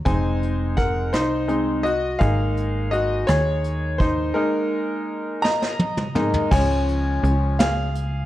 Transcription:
0.05 1.15 F1 medium
0.05 1.09 G#3 soft
0.05 1.09 C4 soft
0.05 1.10 D#4 soft
0.05 0.74 C5 medium
0.05 0.74 G#5 medium
0.05 kick medium
0.05 closed hi-hat medium
0.43 closed hi-hat soft
0.77 1.11 A#4 medium
0.77 1.14 F#5 medium
0.77 kick medium
0.77 closed hi-hat soft
1.13 2.18 C2 medium
1.13 1.47 D#4 medium
1.13 1.87 C5 medium
1.13 cross-stick medium
1.13 closed hi-hat medium
1.48 1.81 G#3 soft
1.48 1.81 C4 soft
1.48 1.81 D#4 soft
1.48 closed hi-hat soft
1.83 2.19 F#4 medium
1.83 2.21 D#5 medium
1.83 closed hi-hat soft
2.19 3.25 G#1 medium
2.19 4.31 G#3 soft
2.19 4.32 A#3 soft
2.19 3.99 D#4 soft
2.19 2.89 G#4 medium
2.19 2.94 F5 medium
2.19 kick medium
2.19 closed hi-hat medium
2.57 closed hi-hat soft
2.91 3.26 F#4 medium
2.91 3.29 D#5 medium
2.91 closed hi-hat soft
3.27 4.33 D#2 medium
3.27 3.97 G#4 medium
3.27 3.96 C#5 medium
3.27 cross-stick loud
3.27 closed hi-hat medium
3.64 closed hi-hat soft
3.98 4.34 D#4 medium
3.98 4.37 C5 medium
3.98 kick medium
3.98 closed hi-hat soft
4.34 5.39 G#3 soft
4.34 5.40 A#3 soft
4.34 5.40 D#4 medium
4.34 5.75 A#4 medium
5.42 6.48 D#5 medium
5.42 6.54 A#5 medium
5.42 snare soft
5.62 snare soft
5.79 high tom medium
5.97 mid tom medium
6.15 6.48 G#3 soft
6.15 6.48 A#3 soft
6.15 6.48 D#4 medium
6.15 mid tom medium
6.34 floor tom medium
6.51 7.19 C#2 loud
6.51 7.55 F3 soft
6.51 7.56 G#3 soft
6.51 7.56 C#4 medium
6.51 7.56 C#5 medium
6.51 7.55 G#5 medium
6.51 kick loud
6.51 crash medium
6.88 closed hi-hat soft
7.23 8.26 C#2 medium
7.23 closed hi-hat soft
7.59 8.26 G#4 medium
7.59 8.26 F5 medium
7.59 snare loud
7.59 closed hi-hat medium
7.95 closed hi-hat soft

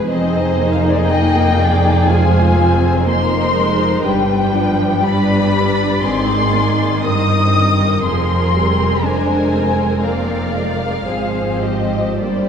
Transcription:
0.08 4.00 F1 medium
0.08 4.00 F2 medium
0.08 0.55 C4 medium
0.08 2.04 D#4 medium
0.08 3.02 G#4 medium
0.08 1.03 C5 soft
0.08 0.70 D#5 medium
0.58 2.07 A#3 medium
0.71 0.80 F5 medium
0.80 0.89 D#5 medium
0.89 0.98 D5 medium
0.98 1.07 D#5 medium
1.06 1.57 D#5 medium
1.06 2.07 G5 medium
1.60 2.08 D5 medium
2.06 2.56 G#3 medium
2.06 3.06 F4 medium
2.06 3.05 C5 soft
2.06 3.06 G#5 medium
2.55 3.05 C4 medium
3.04 3.54 A#3 medium
3.04 4.01 D#4 soft
3.04 4.04 A#4 soft
3.04 4.02 C5 soft
3.04 4.02 C6 medium
3.54 4.03 G#3 medium
4.03 6.00 G1 soft
4.03 5.99 G2 medium
4.03 4.53 G3 medium
4.03 5.03 D4 soft
4.03 5.04 B4 medium
4.03 5.02 G5 medium
4.54 5.04 F3 medium
5.04 6.04 G3 medium
5.04 6.01 D4 medium
5.04 6.02 B4 medium
5.04 7.00 D5 medium
5.04 6.04 B5 medium
6.03 7.04 G#1 medium
6.03 7.04 G#2 medium
6.03 8.05 D#3 medium
6.03 6.52 C4 medium
6.03 7.04 G#4 soft
6.03 7.04 C6 medium
6.53 7.04 A#3 soft
7.02 8.05 G1 soft
7.02 8.05 G2 medium
7.02 8.02 C4 soft
7.02 11.07 A#4 soft
7.02 8.04 D#5 soft
7.02 8.04 D#6 medium
8.03 11.03 F1 soft
8.03 11.03 F2 soft
8.03 8.53 F3 soft
8.03 9.02 C4 soft
8.03 9.03 G#4 soft
8.03 9.02 C6 medium
8.54 9.04 G3 soft
9.03 10.01 G#3 soft
9.03 9.53 D4 soft
9.03 10.04 C5 soft
9.03 10.04 G#5 medium
9.53 11.05 C4 soft
10.03 10.54 A#3 soft
10.03 11.06 D5 soft
10.03 11.62 F5 medium
10.54 11.06 G#3 soft
11.06 12.18 G#1 soft
11.06 12.18 G#2 soft
11.06 12.20 F3 soft
11.06 12.18 C4 soft
11.06 11.61 G#4 soft
11.06 12.18 C5 soft
11.62 12.19 G4 soft
11.62 12.20 D#5 soft
12.19 12.49 G1 soft
12.19 12.49 G2 soft
12.19 12.49 G3 soft
12.19 12.49 A#3 soft
12.19 12.49 G4 soft
12.19 12.49 C5 soft
12.19 12.49 D5 soft

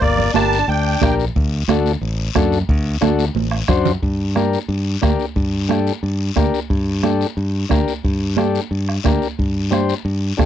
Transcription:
0.01 0.28 G1 loud
0.01 0.32 A#3 medium
0.01 0.32 D5 medium
0.01 bombo low medium
0.01 high conga soft
0.01 long guiro medium
0.18 low conga medium
0.34 0.61 G1 medium
0.34 0.65 D4 medium
0.34 0.58 D4 medium
0.34 0.59 G4 medium
0.34 0.59 A#4 medium
0.34 0.69 A5 loud
0.34 bombo rim medium
0.34 high conga medium
0.34 short guiro medium
0.53 short guiro medium
0.68 0.95 D2 medium
0.68 1.15 D4 medium
0.68 1.15 G5 medium
0.68 high conga soft
0.68 long guiro medium
1.02 1.29 A#1 medium
1.02 1.25 D4 medium
1.02 1.25 G4 medium
1.02 1.25 A#4 medium
1.02 bombo low medium
1.02 bombo rim medium
1.02 high conga medium
1.02 low conga medium
1.02 short guiro medium
1.20 short guiro medium
1.35 1.62 D2 loud
1.35 bombo low medium
1.35 high conga soft
1.35 long guiro medium
1.68 1.95 D2 loud
1.68 1.92 D4 medium
1.68 1.92 F#4 medium
1.68 1.92 A4 medium
1.68 bombo rim medium
1.68 high conga medium
1.68 short guiro medium
1.86 short guiro medium
2.01 2.28 A1 medium
2.01 high conga soft
2.01 long guiro medium
2.35 2.62 F#2 loud
2.35 2.59 D4 medium
2.35 2.58 F#4 medium
2.35 2.59 A4 loud
2.35 bombo low medium
2.35 bombo rim medium
2.35 high conga medium
2.35 short guiro medium
2.52 short guiro medium
2.69 2.95 D2 loud
2.69 bombo low medium
2.69 high conga soft
2.69 long guiro medium
3.01 3.29 D2 loud
3.01 3.25 D4 medium
3.01 3.25 F#4 medium
3.01 3.25 A4 medium
3.01 bombo rim medium
3.01 high conga medium
3.01 short guiro medium
3.19 short guiro medium
3.35 3.62 A1 medium
3.35 high conga medium
3.35 long guiro medium
3.51 bombo rim medium
3.68 3.95 F#2 medium
3.68 3.92 D4 medium
3.68 3.92 F#4 medium
3.68 3.92 C5 loud
3.68 bombo low medium
3.68 bombo rim medium
3.68 low conga medium
3.68 short guiro medium
3.85 low conga loud
3.85 short guiro medium
4.02 4.56 G2 loud
4.02 bombo low medium
4.02 high conga soft
4.02 long guiro medium
4.35 4.59 D4 medium
4.35 4.59 G4 medium
4.35 4.59 A#4 medium
4.35 bombo rim medium
4.35 high conga medium
4.35 short guiro medium
4.53 short guiro medium
4.69 4.96 G2 medium
4.69 high conga soft
4.69 long guiro medium
5.02 5.16 D2 medium
5.02 5.25 D4 medium
5.02 5.26 G4 medium
5.02 5.26 A#4 medium
5.02 bombo low medium
5.02 bombo rim medium
5.02 high conga medium
5.02 short guiro medium
5.20 short guiro medium
5.36 5.90 G2 medium
5.36 bombo low medium
5.36 high conga soft
5.36 long guiro medium
5.68 5.92 D4 medium
5.68 5.93 G4 medium
5.68 5.93 A4 medium
5.68 bombo rim medium
5.68 high conga medium
5.68 short guiro medium
5.87 short guiro medium
6.03 6.30 G2 medium
6.03 high conga soft
6.03 long guiro medium
6.36 6.50 D2 medium
6.36 6.60 D4 medium
6.36 6.60 G4 medium
6.36 6.60 A#4 medium
6.36 bombo low medium
6.36 bombo rim medium
6.36 high conga medium
6.36 short guiro medium
6.54 short guiro medium
6.70 7.24 G2 loud
6.70 bombo low medium
6.70 high conga soft
6.70 long guiro medium
7.03 7.27 D4 medium
7.03 7.27 G4 medium
7.03 7.27 A4 medium
7.03 bombo rim medium
7.03 high conga medium
7.03 short guiro medium
7.21 short guiro medium
7.37 7.64 G2 medium
7.37 high conga soft
7.37 long guiro medium
7.69 7.84 D2 medium
7.69 7.93 D4 medium
7.69 7.94 G4 medium
7.69 7.94 A#4 medium
7.69 bombo low medium
7.69 bombo rim medium
7.69 high conga medium
7.69 short guiro medium
7.88 short guiro medium
8.03 8.58 G2 medium
8.03 bombo low medium
8.03 high conga soft
8.03 long guiro medium
8.37 8.61 D4 medium
8.37 8.61 G4 medium
8.37 8.61 A4 medium
8.37 bombo rim medium
8.37 high conga medium
8.37 short guiro medium
8.55 short guiro medium
8.71 8.98 G2 medium
8.71 high conga soft
8.71 long guiro medium
8.89 bombo rim medium
9.04 9.18 D2 medium
9.04 9.28 D4 medium
9.04 9.28 G4 medium
9.04 9.28 A#4 medium
9.04 bombo low medium
9.04 bombo rim medium
9.04 high conga medium
9.04 short guiro medium
9.22 short guiro medium
9.39 9.92 G2 medium
9.39 bombo low medium
9.39 high conga soft
9.39 long guiro medium
9.71 9.94 D4 medium
9.71 9.95 G4 medium
9.71 9.95 C5 medium
9.71 bombo rim medium
9.71 high conga medium
9.71 short guiro medium
9.89 short guiro medium
10.05 10.32 G2 medium
10.05 high conga soft
10.05 long guiro medium
10.37 10.46 D2 medium
10.37 10.46 D4 medium
10.37 10.46 G4 medium
10.37 10.46 A4 medium
10.37 bombo low medium
10.37 bombo rim medium
10.37 high conga medium
10.37 short guiro medium

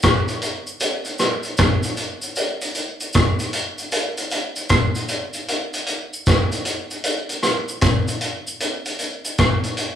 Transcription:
0.02 kick medium
0.02 cross-stick loud
0.02 closed hi-hat medium
0.02 cabasa medium
0.28 closed hi-hat soft
0.28 cabasa soft
0.42 closed hi-hat medium
0.42 cabasa medium
0.67 cabasa medium
0.80 closed hi-hat loud
0.80 cabasa medium
1.05 closed hi-hat soft
1.05 cabasa medium
1.18 cross-stick medium
1.18 closed hi-hat medium
1.18 cabasa soft
1.43 closed hi-hat soft
1.43 cabasa medium
1.57 kick loud
1.57 cross-stick loud
1.57 closed hi-hat medium
1.57 cabasa medium
1.83 closed hi-hat medium
1.83 cabasa medium
1.97 closed hi-hat medium
1.97 cabasa soft
2.22 closed hi-hat soft
2.22 cabasa medium
2.36 closed hi-hat medium
2.36 cabasa medium
2.61 closed hi-hat medium
2.61 cabasa soft
2.75 closed hi-hat medium
2.75 cabasa medium
3.00 closed hi-hat soft
3.00 cabasa medium
3.13 kick loud
3.13 cross-stick loud
3.13 closed hi-hat medium
3.13 cabasa medium
3.39 closed hi-hat medium
3.39 cabasa soft
3.53 closed hi-hat medium
3.53 cabasa medium
3.78 closed hi-hat soft
3.78 cabasa medium
3.91 closed hi-hat loud
3.91 cabasa medium
4.17 closed hi-hat medium
4.17 cabasa soft
4.30 closed hi-hat medium
4.30 cabasa soft
4.56 closed hi-hat soft
4.56 cabasa medium
4.69 kick loud
4.69 cross-stick loud
4.69 closed hi-hat medium
4.69 cabasa medium
4.95 closed hi-hat medium
4.95 cabasa medium
5.08 closed hi-hat medium
5.08 cabasa soft
5.33 closed hi-hat soft
5.33 cabasa medium
5.48 closed hi-hat medium
5.48 cabasa medium
5.73 closed hi-hat medium
5.73 cabasa medium
5.86 closed hi-hat medium
5.86 cabasa medium
6.13 cabasa medium
6.26 kick medium
6.26 cross-stick loud
6.26 closed hi-hat medium
6.26 cabasa medium
6.52 closed hi-hat soft
6.52 cabasa soft
6.65 closed hi-hat medium
6.65 cabasa medium
6.91 closed hi-hat soft
6.91 cabasa medium
7.04 closed hi-hat loud
7.04 cabasa medium
7.29 closed hi-hat soft
7.29 cabasa medium
7.43 cross-stick medium
7.43 closed hi-hat medium
7.43 cabasa soft
7.68 cabasa medium
7.81 kick loud
7.81 cross-stick medium
7.81 closed hi-hat medium
7.81 cabasa medium
8.08 closed hi-hat soft
8.08 cabasa medium
8.21 closed hi-hat medium
8.21 cabasa soft
8.47 cabasa medium
8.60 closed hi-hat medium
8.60 cabasa medium
8.85 closed hi-hat medium
8.85 cabasa soft
8.99 closed hi-hat medium
8.99 cabasa medium
9.24 closed hi-hat soft
9.24 cabasa medium
9.38 kick loud
9.38 cross-stick loud
9.38 closed hi-hat medium
9.38 cabasa medium
9.63 closed hi-hat soft
9.63 cabasa soft
9.77 closed hi-hat medium
9.77 cabasa medium

